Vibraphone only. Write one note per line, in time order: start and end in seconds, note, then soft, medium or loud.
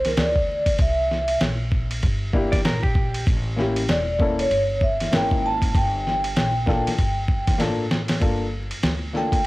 0.07 0.19 A#4 medium
0.19 0.76 D5 medium
0.82 1.39 E5 loud
3.90 4.40 D5 medium
4.40 4.80 C#5 medium
4.83 5.11 E5 medium
5.14 5.45 G5 medium
5.46 5.76 A5 loud
5.76 7.57 G5 medium
9.17 9.45 G5 loud